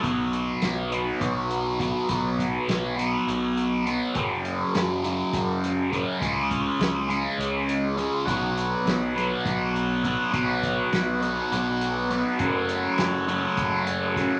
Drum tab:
HH |xxxxxxx|xxxxxxx|xxxxxxx|xxxxxxx|
SD |--o---o|-oo----|--oo-oo|--o----|
BD |o---o-o|oo-----|o---o-o|oo-----|

HH |xxxxxxx|xxxxxxx|xxxxxxx|
SD |--oo---|-oo-o--|--o---o|
BD |o---o-o|oo-----|o---o-o|